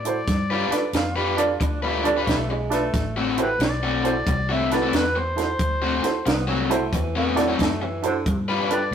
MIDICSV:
0, 0, Header, 1, 9, 480
1, 0, Start_track
1, 0, Tempo, 665927
1, 201, Time_signature, 4, 2, 24, 8
1, 6448, End_track
2, 0, Start_track
2, 0, Title_t, "Harmonica"
2, 0, Program_c, 0, 22
2, 0, Note_on_c, 0, 74, 96
2, 829, Note_off_c, 0, 74, 0
2, 2467, Note_on_c, 0, 64, 58
2, 2467, Note_on_c, 0, 67, 58
2, 2467, Note_on_c, 0, 71, 82
2, 2510, Note_off_c, 0, 67, 0
2, 2517, Note_off_c, 0, 64, 0
2, 2610, Note_off_c, 0, 71, 0
2, 2623, Note_on_c, 0, 74, 94
2, 3265, Note_on_c, 0, 76, 77
2, 3275, Note_off_c, 0, 74, 0
2, 3417, Note_on_c, 0, 74, 67
2, 3427, Note_off_c, 0, 76, 0
2, 3577, Note_on_c, 0, 71, 81
2, 3588, Note_off_c, 0, 74, 0
2, 3737, Note_on_c, 0, 72, 100
2, 3747, Note_off_c, 0, 71, 0
2, 4660, Note_off_c, 0, 72, 0
2, 6293, Note_on_c, 0, 67, 63
2, 6293, Note_on_c, 0, 71, 63
2, 6293, Note_on_c, 0, 74, 89
2, 6354, Note_off_c, 0, 67, 0
2, 6354, Note_off_c, 0, 71, 0
2, 6443, Note_off_c, 0, 74, 0
2, 6448, End_track
3, 0, Start_track
3, 0, Title_t, "Upright piano"
3, 0, Program_c, 1, 0
3, 34, Note_on_c, 1, 64, 59
3, 38, Note_on_c, 1, 66, 52
3, 39, Note_on_c, 1, 69, 57
3, 51, Note_on_c, 1, 72, 69
3, 117, Note_off_c, 1, 64, 0
3, 120, Note_off_c, 1, 66, 0
3, 120, Note_off_c, 1, 69, 0
3, 126, Note_off_c, 1, 72, 0
3, 511, Note_on_c, 1, 62, 62
3, 512, Note_on_c, 1, 65, 57
3, 520, Note_on_c, 1, 69, 61
3, 522, Note_on_c, 1, 71, 68
3, 596, Note_off_c, 1, 62, 0
3, 597, Note_off_c, 1, 65, 0
3, 601, Note_off_c, 1, 69, 0
3, 602, Note_off_c, 1, 71, 0
3, 988, Note_on_c, 1, 65, 65
3, 990, Note_on_c, 1, 62, 80
3, 996, Note_on_c, 1, 69, 68
3, 998, Note_on_c, 1, 74, 89
3, 1075, Note_off_c, 1, 65, 0
3, 1076, Note_off_c, 1, 62, 0
3, 1079, Note_off_c, 1, 69, 0
3, 1080, Note_off_c, 1, 74, 0
3, 1472, Note_on_c, 1, 62, 86
3, 1472, Note_on_c, 1, 65, 76
3, 1479, Note_on_c, 1, 69, 85
3, 1480, Note_on_c, 1, 74, 99
3, 1557, Note_off_c, 1, 62, 0
3, 1557, Note_off_c, 1, 65, 0
3, 1561, Note_off_c, 1, 69, 0
3, 1561, Note_off_c, 1, 74, 0
3, 1947, Note_on_c, 1, 62, 78
3, 1950, Note_on_c, 1, 65, 71
3, 1953, Note_on_c, 1, 69, 71
3, 1955, Note_on_c, 1, 71, 80
3, 2035, Note_off_c, 1, 62, 0
3, 2036, Note_off_c, 1, 65, 0
3, 2038, Note_off_c, 1, 69, 0
3, 2038, Note_off_c, 1, 71, 0
3, 2428, Note_on_c, 1, 64, 61
3, 2434, Note_on_c, 1, 66, 60
3, 2440, Note_on_c, 1, 69, 58
3, 2440, Note_on_c, 1, 72, 67
3, 2515, Note_off_c, 1, 64, 0
3, 2518, Note_off_c, 1, 66, 0
3, 2521, Note_off_c, 1, 69, 0
3, 2521, Note_off_c, 1, 72, 0
3, 2907, Note_on_c, 1, 64, 64
3, 2911, Note_on_c, 1, 66, 62
3, 2912, Note_on_c, 1, 69, 62
3, 2913, Note_on_c, 1, 72, 74
3, 2995, Note_off_c, 1, 64, 0
3, 2996, Note_off_c, 1, 66, 0
3, 2997, Note_off_c, 1, 69, 0
3, 2997, Note_off_c, 1, 72, 0
3, 3396, Note_on_c, 1, 64, 76
3, 3399, Note_on_c, 1, 69, 66
3, 3400, Note_on_c, 1, 66, 61
3, 3404, Note_on_c, 1, 71, 82
3, 3479, Note_off_c, 1, 64, 0
3, 3480, Note_off_c, 1, 69, 0
3, 3481, Note_off_c, 1, 66, 0
3, 3483, Note_off_c, 1, 71, 0
3, 3862, Note_on_c, 1, 64, 61
3, 3869, Note_on_c, 1, 66, 59
3, 3869, Note_on_c, 1, 69, 61
3, 3878, Note_on_c, 1, 72, 68
3, 3952, Note_off_c, 1, 64, 0
3, 3955, Note_off_c, 1, 66, 0
3, 3956, Note_off_c, 1, 69, 0
3, 3960, Note_off_c, 1, 72, 0
3, 4346, Note_on_c, 1, 64, 55
3, 4351, Note_on_c, 1, 66, 57
3, 4355, Note_on_c, 1, 69, 57
3, 4355, Note_on_c, 1, 72, 66
3, 4434, Note_off_c, 1, 64, 0
3, 4436, Note_off_c, 1, 66, 0
3, 4438, Note_off_c, 1, 69, 0
3, 4438, Note_off_c, 1, 72, 0
3, 4826, Note_on_c, 1, 64, 86
3, 4829, Note_on_c, 1, 69, 73
3, 4830, Note_on_c, 1, 66, 72
3, 4834, Note_on_c, 1, 72, 88
3, 4914, Note_off_c, 1, 64, 0
3, 4915, Note_off_c, 1, 69, 0
3, 4916, Note_off_c, 1, 66, 0
3, 4918, Note_off_c, 1, 72, 0
3, 5294, Note_on_c, 1, 64, 80
3, 5301, Note_on_c, 1, 66, 75
3, 5306, Note_on_c, 1, 69, 73
3, 5307, Note_on_c, 1, 74, 86
3, 5387, Note_off_c, 1, 64, 0
3, 5391, Note_off_c, 1, 66, 0
3, 5394, Note_off_c, 1, 69, 0
3, 5394, Note_off_c, 1, 74, 0
3, 5783, Note_on_c, 1, 64, 66
3, 5785, Note_on_c, 1, 66, 70
3, 5791, Note_on_c, 1, 69, 69
3, 5798, Note_on_c, 1, 72, 76
3, 5872, Note_off_c, 1, 64, 0
3, 5873, Note_off_c, 1, 66, 0
3, 5875, Note_off_c, 1, 69, 0
3, 5879, Note_off_c, 1, 72, 0
3, 6265, Note_on_c, 1, 62, 61
3, 6270, Note_on_c, 1, 65, 56
3, 6273, Note_on_c, 1, 69, 54
3, 6276, Note_on_c, 1, 71, 69
3, 6352, Note_off_c, 1, 62, 0
3, 6354, Note_off_c, 1, 65, 0
3, 6356, Note_off_c, 1, 69, 0
3, 6358, Note_off_c, 1, 71, 0
3, 6448, End_track
4, 0, Start_track
4, 0, Title_t, "Overdriven electric guitar"
4, 0, Program_c, 2, 29
4, 364, Note_on_c, 2, 71, 78
4, 369, Note_on_c, 2, 65, 90
4, 374, Note_on_c, 2, 55, 75
4, 376, Note_on_c, 2, 62, 78
4, 516, Note_off_c, 2, 62, 0
4, 517, Note_off_c, 2, 55, 0
4, 520, Note_off_c, 2, 65, 0
4, 521, Note_off_c, 2, 71, 0
4, 835, Note_on_c, 2, 71, 76
4, 842, Note_on_c, 2, 62, 67
4, 843, Note_on_c, 2, 65, 65
4, 845, Note_on_c, 2, 55, 62
4, 1021, Note_off_c, 2, 71, 0
4, 1024, Note_off_c, 2, 62, 0
4, 1025, Note_off_c, 2, 65, 0
4, 1026, Note_off_c, 2, 55, 0
4, 1316, Note_on_c, 2, 71, 80
4, 1323, Note_on_c, 2, 62, 71
4, 1325, Note_on_c, 2, 55, 71
4, 1325, Note_on_c, 2, 65, 75
4, 1501, Note_off_c, 2, 71, 0
4, 1505, Note_off_c, 2, 62, 0
4, 1506, Note_off_c, 2, 55, 0
4, 1506, Note_off_c, 2, 65, 0
4, 1563, Note_on_c, 2, 71, 70
4, 1564, Note_on_c, 2, 65, 55
4, 1567, Note_on_c, 2, 62, 63
4, 1569, Note_on_c, 2, 55, 54
4, 1691, Note_off_c, 2, 65, 0
4, 1691, Note_off_c, 2, 71, 0
4, 1693, Note_off_c, 2, 62, 0
4, 1694, Note_off_c, 2, 55, 0
4, 2282, Note_on_c, 2, 66, 84
4, 2285, Note_on_c, 2, 60, 88
4, 2289, Note_on_c, 2, 57, 79
4, 2291, Note_on_c, 2, 50, 74
4, 2432, Note_off_c, 2, 50, 0
4, 2436, Note_off_c, 2, 60, 0
4, 2438, Note_off_c, 2, 57, 0
4, 2440, Note_off_c, 2, 66, 0
4, 2763, Note_on_c, 2, 66, 86
4, 2765, Note_on_c, 2, 60, 66
4, 2766, Note_on_c, 2, 57, 65
4, 2771, Note_on_c, 2, 50, 66
4, 2945, Note_off_c, 2, 66, 0
4, 2946, Note_off_c, 2, 57, 0
4, 2946, Note_off_c, 2, 60, 0
4, 2949, Note_off_c, 2, 50, 0
4, 3238, Note_on_c, 2, 66, 78
4, 3243, Note_on_c, 2, 60, 76
4, 3245, Note_on_c, 2, 57, 72
4, 3249, Note_on_c, 2, 50, 67
4, 3422, Note_off_c, 2, 66, 0
4, 3425, Note_off_c, 2, 60, 0
4, 3426, Note_off_c, 2, 57, 0
4, 3428, Note_off_c, 2, 50, 0
4, 3474, Note_on_c, 2, 66, 69
4, 3478, Note_on_c, 2, 57, 65
4, 3478, Note_on_c, 2, 60, 64
4, 3483, Note_on_c, 2, 50, 56
4, 3606, Note_off_c, 2, 66, 0
4, 3608, Note_off_c, 2, 57, 0
4, 3608, Note_off_c, 2, 60, 0
4, 3611, Note_off_c, 2, 50, 0
4, 4195, Note_on_c, 2, 66, 90
4, 4196, Note_on_c, 2, 60, 87
4, 4203, Note_on_c, 2, 57, 76
4, 4207, Note_on_c, 2, 50, 71
4, 4343, Note_off_c, 2, 50, 0
4, 4345, Note_off_c, 2, 57, 0
4, 4346, Note_off_c, 2, 60, 0
4, 4350, Note_off_c, 2, 66, 0
4, 4667, Note_on_c, 2, 66, 71
4, 4670, Note_on_c, 2, 60, 66
4, 4674, Note_on_c, 2, 57, 59
4, 4676, Note_on_c, 2, 50, 56
4, 4857, Note_off_c, 2, 66, 0
4, 4858, Note_off_c, 2, 60, 0
4, 4860, Note_off_c, 2, 57, 0
4, 4861, Note_off_c, 2, 50, 0
4, 5158, Note_on_c, 2, 60, 71
4, 5158, Note_on_c, 2, 66, 73
4, 5161, Note_on_c, 2, 57, 79
4, 5165, Note_on_c, 2, 50, 56
4, 5342, Note_off_c, 2, 60, 0
4, 5342, Note_off_c, 2, 66, 0
4, 5343, Note_off_c, 2, 57, 0
4, 5345, Note_off_c, 2, 50, 0
4, 5390, Note_on_c, 2, 60, 64
4, 5391, Note_on_c, 2, 66, 62
4, 5393, Note_on_c, 2, 57, 63
4, 5397, Note_on_c, 2, 50, 60
4, 5524, Note_off_c, 2, 60, 0
4, 5524, Note_off_c, 2, 66, 0
4, 5525, Note_off_c, 2, 57, 0
4, 5527, Note_off_c, 2, 50, 0
4, 6116, Note_on_c, 2, 71, 88
4, 6120, Note_on_c, 2, 62, 81
4, 6122, Note_on_c, 2, 65, 91
4, 6127, Note_on_c, 2, 55, 71
4, 6271, Note_off_c, 2, 55, 0
4, 6274, Note_off_c, 2, 65, 0
4, 6275, Note_off_c, 2, 62, 0
4, 6275, Note_off_c, 2, 71, 0
4, 6448, End_track
5, 0, Start_track
5, 0, Title_t, "Tenor saxophone"
5, 0, Program_c, 3, 66
5, 690, Note_on_c, 3, 65, 81
5, 837, Note_on_c, 3, 67, 71
5, 848, Note_off_c, 3, 65, 0
5, 994, Note_off_c, 3, 67, 0
5, 998, Note_on_c, 3, 65, 64
5, 1153, Note_on_c, 3, 62, 72
5, 1164, Note_off_c, 3, 65, 0
5, 1311, Note_on_c, 3, 57, 77
5, 1322, Note_off_c, 3, 62, 0
5, 1472, Note_off_c, 3, 57, 0
5, 1477, Note_on_c, 3, 62, 77
5, 1641, Note_on_c, 3, 57, 81
5, 1652, Note_off_c, 3, 62, 0
5, 1799, Note_on_c, 3, 56, 85
5, 1810, Note_off_c, 3, 57, 0
5, 1956, Note_off_c, 3, 56, 0
5, 1961, Note_on_c, 3, 57, 88
5, 2373, Note_off_c, 3, 57, 0
5, 4514, Note_on_c, 3, 59, 92
5, 4669, Note_off_c, 3, 59, 0
5, 4674, Note_on_c, 3, 54, 80
5, 4847, Note_on_c, 3, 57, 67
5, 4858, Note_off_c, 3, 54, 0
5, 5004, Note_on_c, 3, 52, 77
5, 5015, Note_off_c, 3, 57, 0
5, 5158, Note_off_c, 3, 52, 0
5, 5168, Note_on_c, 3, 59, 83
5, 5332, Note_on_c, 3, 54, 78
5, 5343, Note_off_c, 3, 59, 0
5, 5485, Note_on_c, 3, 57, 79
5, 5496, Note_off_c, 3, 54, 0
5, 5647, Note_on_c, 3, 52, 86
5, 5658, Note_off_c, 3, 57, 0
5, 5799, Note_off_c, 3, 52, 0
5, 5815, Note_on_c, 3, 50, 75
5, 6116, Note_off_c, 3, 50, 0
5, 6448, End_track
6, 0, Start_track
6, 0, Title_t, "Fingered electric bass"
6, 0, Program_c, 4, 33
6, 0, Note_on_c, 4, 45, 88
6, 183, Note_off_c, 4, 45, 0
6, 197, Note_on_c, 4, 43, 78
6, 494, Note_off_c, 4, 43, 0
6, 671, Note_on_c, 4, 41, 80
6, 1142, Note_off_c, 4, 41, 0
6, 1158, Note_on_c, 4, 38, 71
6, 1626, Note_off_c, 4, 38, 0
6, 1634, Note_on_c, 4, 35, 89
6, 2104, Note_off_c, 4, 35, 0
6, 2116, Note_on_c, 4, 33, 80
6, 2585, Note_off_c, 4, 33, 0
6, 2589, Note_on_c, 4, 35, 89
6, 3061, Note_off_c, 4, 35, 0
6, 3072, Note_on_c, 4, 36, 74
6, 3542, Note_off_c, 4, 36, 0
6, 3551, Note_on_c, 4, 40, 87
6, 4022, Note_off_c, 4, 40, 0
6, 4030, Note_on_c, 4, 38, 78
6, 4330, Note_off_c, 4, 38, 0
6, 4513, Note_on_c, 4, 36, 80
6, 4982, Note_off_c, 4, 36, 0
6, 4991, Note_on_c, 4, 40, 77
6, 5461, Note_off_c, 4, 40, 0
6, 5470, Note_on_c, 4, 42, 92
6, 5940, Note_off_c, 4, 42, 0
6, 5953, Note_on_c, 4, 43, 78
6, 6419, Note_off_c, 4, 43, 0
6, 6423, Note_on_c, 4, 38, 81
6, 6448, Note_off_c, 4, 38, 0
6, 6448, End_track
7, 0, Start_track
7, 0, Title_t, "Muted fingered electric bass strokes"
7, 508, Note_on_c, 9, 29, 37
7, 580, Note_off_c, 9, 29, 0
7, 4351, Note_on_c, 9, 29, 36
7, 4423, Note_off_c, 9, 29, 0
7, 6448, End_track
8, 0, Start_track
8, 0, Title_t, "Muted overdriven electric guitar strokes"
8, 524, Note_on_c, 9, 29, 42
8, 596, Note_off_c, 9, 29, 0
8, 684, Note_on_c, 9, 29, 49
8, 756, Note_off_c, 9, 29, 0
8, 1156, Note_on_c, 9, 29, 44
8, 1228, Note_off_c, 9, 29, 0
8, 1805, Note_on_c, 9, 29, 44
8, 1877, Note_off_c, 9, 29, 0
8, 2441, Note_on_c, 9, 29, 44
8, 2513, Note_off_c, 9, 29, 0
8, 2605, Note_on_c, 9, 29, 44
8, 2677, Note_off_c, 9, 29, 0
8, 3083, Note_on_c, 9, 29, 46
8, 3155, Note_off_c, 9, 29, 0
8, 3717, Note_on_c, 9, 29, 47
8, 3789, Note_off_c, 9, 29, 0
8, 4352, Note_on_c, 9, 29, 42
8, 4424, Note_off_c, 9, 29, 0
8, 4511, Note_on_c, 9, 29, 44
8, 4583, Note_off_c, 9, 29, 0
8, 4995, Note_on_c, 9, 29, 43
8, 5067, Note_off_c, 9, 29, 0
8, 5635, Note_on_c, 9, 29, 46
8, 5707, Note_off_c, 9, 29, 0
8, 6279, Note_on_c, 9, 29, 38
8, 6351, Note_off_c, 9, 29, 0
8, 6448, End_track
9, 0, Start_track
9, 0, Title_t, "Drums"
9, 36, Note_on_c, 9, 42, 55
9, 108, Note_off_c, 9, 42, 0
9, 199, Note_on_c, 9, 36, 105
9, 200, Note_on_c, 9, 42, 72
9, 212, Note_on_c, 9, 38, 29
9, 271, Note_off_c, 9, 36, 0
9, 272, Note_off_c, 9, 42, 0
9, 284, Note_off_c, 9, 38, 0
9, 518, Note_on_c, 9, 42, 62
9, 531, Note_on_c, 9, 38, 30
9, 590, Note_off_c, 9, 42, 0
9, 603, Note_off_c, 9, 38, 0
9, 672, Note_on_c, 9, 42, 71
9, 684, Note_on_c, 9, 38, 96
9, 744, Note_off_c, 9, 42, 0
9, 756, Note_off_c, 9, 38, 0
9, 995, Note_on_c, 9, 42, 57
9, 1067, Note_off_c, 9, 42, 0
9, 1158, Note_on_c, 9, 36, 95
9, 1160, Note_on_c, 9, 42, 81
9, 1230, Note_off_c, 9, 36, 0
9, 1232, Note_off_c, 9, 42, 0
9, 1478, Note_on_c, 9, 42, 55
9, 1550, Note_off_c, 9, 42, 0
9, 1639, Note_on_c, 9, 36, 74
9, 1639, Note_on_c, 9, 42, 78
9, 1652, Note_on_c, 9, 38, 99
9, 1711, Note_off_c, 9, 36, 0
9, 1711, Note_off_c, 9, 42, 0
9, 1724, Note_off_c, 9, 38, 0
9, 1957, Note_on_c, 9, 42, 60
9, 1969, Note_on_c, 9, 38, 29
9, 2029, Note_off_c, 9, 42, 0
9, 2041, Note_off_c, 9, 38, 0
9, 2117, Note_on_c, 9, 36, 106
9, 2119, Note_on_c, 9, 42, 81
9, 2131, Note_on_c, 9, 38, 32
9, 2189, Note_off_c, 9, 36, 0
9, 2191, Note_off_c, 9, 42, 0
9, 2203, Note_off_c, 9, 38, 0
9, 2434, Note_on_c, 9, 42, 60
9, 2506, Note_off_c, 9, 42, 0
9, 2594, Note_on_c, 9, 42, 68
9, 2606, Note_on_c, 9, 38, 98
9, 2666, Note_off_c, 9, 42, 0
9, 2678, Note_off_c, 9, 38, 0
9, 2918, Note_on_c, 9, 42, 52
9, 2990, Note_off_c, 9, 42, 0
9, 3075, Note_on_c, 9, 36, 93
9, 3076, Note_on_c, 9, 42, 81
9, 3147, Note_off_c, 9, 36, 0
9, 3148, Note_off_c, 9, 42, 0
9, 3398, Note_on_c, 9, 42, 51
9, 3410, Note_on_c, 9, 38, 31
9, 3470, Note_off_c, 9, 42, 0
9, 3482, Note_off_c, 9, 38, 0
9, 3554, Note_on_c, 9, 42, 81
9, 3566, Note_on_c, 9, 38, 93
9, 3626, Note_off_c, 9, 42, 0
9, 3638, Note_off_c, 9, 38, 0
9, 3876, Note_on_c, 9, 42, 53
9, 3888, Note_on_c, 9, 38, 28
9, 3948, Note_off_c, 9, 42, 0
9, 3960, Note_off_c, 9, 38, 0
9, 4032, Note_on_c, 9, 36, 96
9, 4032, Note_on_c, 9, 42, 76
9, 4104, Note_off_c, 9, 36, 0
9, 4104, Note_off_c, 9, 42, 0
9, 4352, Note_on_c, 9, 42, 57
9, 4364, Note_on_c, 9, 38, 30
9, 4424, Note_off_c, 9, 42, 0
9, 4436, Note_off_c, 9, 38, 0
9, 4515, Note_on_c, 9, 42, 75
9, 4527, Note_on_c, 9, 38, 107
9, 4587, Note_off_c, 9, 42, 0
9, 4599, Note_off_c, 9, 38, 0
9, 4835, Note_on_c, 9, 42, 59
9, 4907, Note_off_c, 9, 42, 0
9, 4993, Note_on_c, 9, 36, 99
9, 4995, Note_on_c, 9, 42, 83
9, 5065, Note_off_c, 9, 36, 0
9, 5067, Note_off_c, 9, 42, 0
9, 5313, Note_on_c, 9, 42, 55
9, 5325, Note_on_c, 9, 38, 29
9, 5385, Note_off_c, 9, 42, 0
9, 5397, Note_off_c, 9, 38, 0
9, 5473, Note_on_c, 9, 36, 70
9, 5477, Note_on_c, 9, 42, 77
9, 5489, Note_on_c, 9, 38, 94
9, 5545, Note_off_c, 9, 36, 0
9, 5549, Note_off_c, 9, 42, 0
9, 5561, Note_off_c, 9, 38, 0
9, 5791, Note_on_c, 9, 42, 61
9, 5863, Note_off_c, 9, 42, 0
9, 5954, Note_on_c, 9, 42, 81
9, 5955, Note_on_c, 9, 36, 102
9, 6027, Note_off_c, 9, 36, 0
9, 6027, Note_off_c, 9, 42, 0
9, 6275, Note_on_c, 9, 42, 60
9, 6347, Note_off_c, 9, 42, 0
9, 6448, End_track
0, 0, End_of_file